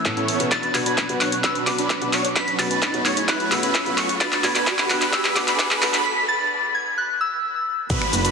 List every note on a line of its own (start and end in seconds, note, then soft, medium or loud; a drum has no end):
0.00 0.50 A2 medium
0.00 0.50 E3 medium
0.00 0.50 C#4 medium
0.00 2.32 B4 medium
0.00 0.25 E6 medium
0.00 riser medium
0.05 0.22 A2 medium
0.05 0.22 B3 medium
0.05 0.22 C#4 medium
0.05 0.23 E4 medium
0.05 0.23 A4 medium
0.05 kick loud
0.05 clap medium
0.05 closed hi-hat soft
0.17 0.49 B3 medium
0.17 0.49 C#4 medium
0.17 0.49 E4 medium
0.17 0.49 A4 medium
0.17 0.49 C#5 medium
0.17 0.49 C#6 medium
0.17 closed hi-hat soft
0.28 open hi-hat loud
0.39 0.50 B2 medium
0.39 0.50 B3 medium
0.39 0.50 C#4 medium
0.39 0.50 E4 medium
0.39 0.50 A4 medium
0.39 closed hi-hat soft
0.51 2.34 B2 medium
0.51 4.17 F#3 medium
0.51 0.83 D4 medium
0.51 2.34 D4 medium
0.51 0.83 F#4 medium
0.51 0.83 B5 medium
0.51 0.75 A6 loud
0.51 kick loud
0.51 clap medium
0.51 closed hi-hat soft
0.63 closed hi-hat soft
0.74 0.91 B2 medium
0.74 0.92 B3 medium
0.74 0.92 D4 medium
0.74 0.92 F#4 medium
0.74 0.92 B4 medium
0.74 1.17 G#6 loud
0.74 clap medium
0.74 open hi-hat loud
0.86 1.18 D4 medium
0.86 1.18 F#4 medium
0.86 1.18 B4 medium
0.86 1.18 B5 medium
0.86 closed hi-hat medium
0.98 kick loud
0.98 clap medium
0.98 closed hi-hat soft
1.09 1.26 B2 medium
1.09 1.26 B3 medium
1.09 1.26 D4 medium
1.09 1.26 F#4 medium
1.09 1.27 B4 medium
1.09 closed hi-hat soft
1.21 1.34 D4 medium
1.21 1.34 F#4 medium
1.21 1.34 C#5 medium
1.21 1.34 C#6 medium
1.21 1.44 F#6 medium
1.21 clap medium
1.21 open hi-hat medium
1.32 closed hi-hat soft
1.44 1.76 D4 medium
1.44 1.76 F#4 medium
1.44 1.76 B4 medium
1.44 1.76 B5 medium
1.44 1.54 E6 medium
1.44 kick loud
1.44 clap medium
1.44 closed hi-hat medium
1.55 closed hi-hat soft
1.66 1.84 B2 medium
1.66 1.84 B3 medium
1.66 1.84 D4 medium
1.66 1.84 F#4 medium
1.66 1.84 B4 medium
1.66 2.10 D6 medium
1.66 clap medium
1.66 open hi-hat loud
1.78 2.10 D4 medium
1.78 2.10 F#4 medium
1.78 2.10 B4 medium
1.78 2.10 B5 loud
1.78 closed hi-hat medium
1.90 kick loud
1.90 clap medium
1.90 closed hi-hat soft
2.01 2.18 B2 medium
2.01 2.18 B3 medium
2.01 2.19 D4 medium
2.01 2.19 F#4 medium
2.01 2.19 B4 medium
2.01 closed hi-hat soft
2.13 2.26 D4 medium
2.13 2.26 F#4 medium
2.13 2.26 C#5 loud
2.13 2.26 C#6 loud
2.13 clap medium
2.13 open hi-hat medium
2.25 closed hi-hat soft
2.36 4.19 F#2 medium
2.36 6.02 A3 medium
2.36 2.68 C#4 medium
2.36 2.68 F#4 medium
2.36 4.19 G#4 medium
2.36 2.68 B4 medium
2.36 2.68 B5 medium
2.36 2.47 B6 loud
2.36 kick loud
2.36 clap medium
2.36 closed hi-hat medium
2.48 closed hi-hat soft
2.59 2.76 B2 medium
2.59 2.76 B3 medium
2.59 2.76 C#4 medium
2.59 2.76 F#4 medium
2.59 2.77 B4 medium
2.59 3.07 A6 loud
2.59 clap medium
2.59 open hi-hat loud
2.71 3.03 C#4 medium
2.71 3.03 F#4 medium
2.71 3.03 B4 medium
2.71 3.03 B5 medium
2.71 closed hi-hat medium
2.82 kick loud
2.82 clap medium
2.82 closed hi-hat soft
2.93 3.11 B2 medium
2.93 3.11 B3 medium
2.93 3.11 C#4 medium
2.93 3.11 F#4 medium
2.93 3.11 B4 medium
2.93 closed hi-hat soft
3.05 3.18 C#4 medium
3.05 3.18 F#4 medium
3.05 3.18 C#5 loud
3.05 3.18 C#6 loud
3.05 3.29 G#6 loud
3.05 clap medium
3.05 open hi-hat medium
3.17 closed hi-hat medium
3.28 3.60 C#4 medium
3.28 3.60 B4 medium
3.28 3.60 B5 medium
3.28 3.52 F#6 medium
3.28 kick loud
3.28 clap medium
3.28 closed hi-hat medium
3.40 closed hi-hat soft
3.51 3.68 B2 medium
3.51 3.68 B3 medium
3.51 3.69 C#4 medium
3.51 3.69 F#4 medium
3.51 3.69 B4 medium
3.51 3.94 E6 medium
3.51 clap medium
3.51 open hi-hat loud
3.63 3.95 C#4 medium
3.63 3.95 F#4 medium
3.63 3.95 B4 medium
3.63 3.95 B5 loud
3.63 closed hi-hat medium
3.75 kick loud
3.75 clap medium
3.75 closed hi-hat medium
3.86 4.03 B2 medium
3.86 4.03 B3 medium
3.86 4.03 C#4 medium
3.86 4.03 F#4 medium
3.86 4.04 B4 medium
3.86 closed hi-hat soft
3.98 4.10 C#4 medium
3.98 4.10 F#4 medium
3.98 4.10 C#5 loud
3.98 4.10 C#6 loud
3.98 clap medium
3.98 open hi-hat medium
4.09 closed hi-hat soft
4.21 6.03 D2 medium
4.21 6.03 D3 medium
4.21 4.53 D4 medium
4.21 4.53 F#4 medium
4.21 6.03 F#4 medium
4.21 4.53 B4 medium
4.21 4.53 B5 medium
4.21 4.42 A6 loud
4.21 kick loud
4.21 clap medium
4.21 closed hi-hat medium
4.32 clap medium
4.32 closed hi-hat soft
4.43 4.61 B2 medium
4.43 4.61 B3 medium
4.43 4.61 D4 medium
4.43 4.61 F#4 medium
4.43 4.61 B4 loud
4.43 4.91 G#6 loud
4.43 clap medium
4.43 open hi-hat loud
4.55 4.65 D4 medium
4.55 4.65 F#4 medium
4.55 4.65 B4 loud
4.55 4.65 B5 medium
4.55 clap medium
4.55 closed hi-hat medium
4.67 4.99 D4 medium
4.67 4.99 F#4 medium
4.67 4.99 B4 medium
4.67 4.99 B5 medium
4.67 kick loud
4.67 clap medium
4.67 closed hi-hat medium
4.79 clap medium
4.79 closed hi-hat soft
4.89 5.07 B2 medium
4.89 5.07 B3 medium
4.89 5.07 D4 medium
4.89 5.07 F#4 medium
4.89 5.07 B4 loud
4.89 5.14 F#6 loud
4.89 clap medium
4.89 open hi-hat medium
5.01 5.11 D4 medium
5.01 5.11 F#4 medium
5.01 5.11 B4 loud
5.01 5.11 B5 loud
5.01 clap medium
5.01 closed hi-hat medium
5.13 5.45 D4 medium
5.13 5.45 F#4 medium
5.13 5.45 B5 medium
5.13 5.37 E6 loud
5.13 kick loud
5.13 clap medium
5.13 closed hi-hat medium
5.25 clap medium
5.25 closed hi-hat soft
5.36 5.53 B2 medium
5.36 5.53 B3 medium
5.36 5.53 D4 medium
5.36 5.53 F#4 medium
5.36 5.54 B4 loud
5.36 5.79 D6 medium
5.36 clap medium
5.36 open hi-hat loud
5.48 5.57 D4 loud
5.48 5.57 F#4 medium
5.48 5.57 B4 loud
5.48 5.57 B5 loud
5.48 clap medium
5.48 closed hi-hat medium
5.59 5.91 D4 medium
5.59 5.91 F#4 medium
5.59 5.91 B4 loud
5.59 5.91 B5 medium
5.59 kick loud
5.59 clap loud
5.59 closed hi-hat medium
5.71 clap medium
5.71 closed hi-hat soft
5.82 5.99 B2 medium
5.82 5.99 B3 medium
5.82 5.99 D4 medium
5.82 6.00 F#4 medium
5.82 6.00 B4 loud
5.82 clap loud
5.82 open hi-hat medium
5.94 6.03 D4 medium
5.94 6.03 F#4 medium
5.94 6.03 B4 loud
5.94 6.03 B5 loud
5.94 clap medium
5.94 closed hi-hat medium
6.05 6.29 B6 loud
6.28 6.76 A6 loud
6.75 6.98 G#6 loud
6.98 7.19 F#6 medium
7.21 7.64 E6 medium
7.90 7.98 B1 loud
7.90 8.31 F#3 medium
7.90 8.31 B3 medium
7.90 8.31 D4 medium
7.90 8.22 D4 medium
7.90 8.22 F#4 medium
7.90 8.22 B4 medium
7.90 8.22 B5 medium
7.90 kick loud
7.90 closed hi-hat medium
7.90 crash loud
7.90 downlifter medium
7.90 shaker soft
8.02 finger snap medium
8.02 closed hi-hat soft
8.13 8.29 F#1 medium
8.13 open hi-hat loud
8.13 shaker medium
8.25 8.31 D4 medium
8.25 8.31 F#4 medium
8.25 8.31 B4 loud
8.25 8.31 B5 loud
8.25 closed hi-hat medium
8.25 shaker soft